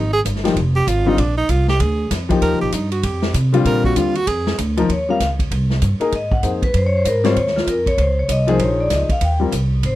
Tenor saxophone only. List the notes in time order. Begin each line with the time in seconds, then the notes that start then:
Already playing: D#4
0.13 G#4
0.76 G4
0.89 F4
1.08 D#4
1.19 D4
1.37 D#4
1.50 F4
1.69 G4
1.81 G#4
2.42 A#4
2.61 G4
2.74 D#4
2.92 F#4
3.04 G4
3.66 A#4
3.85 F#4
3.97 F4
4.16 F#4
4.28 G#4